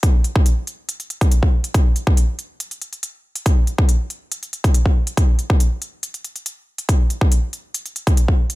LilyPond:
\new DrumStaff \with { instrumentName = "Drums" } \drummode { \time 4/4 \tempo 4 = 140 <hh bd>8 hh16 bd16 hh8 hh8 hh16 hh16 hh16 <hh bd>16 hh16 bd8 hh16 | <hh bd>8 hh16 bd16 hh8 hh8 hh16 hh16 hh16 hh16 hh8. hh16 | <hh bd>8 hh16 bd16 hh8 hh8 hh16 hh16 hh16 <hh bd>16 hh16 bd8 hh16 | <hh bd>8 hh16 bd16 hh8 hh8 hh16 hh16 hh16 hh16 hh8. hh16 |
<hh bd>8 hh16 bd16 hh8 hh8 hh16 hh16 hh16 <hh bd>16 hh16 bd8 hh16 | }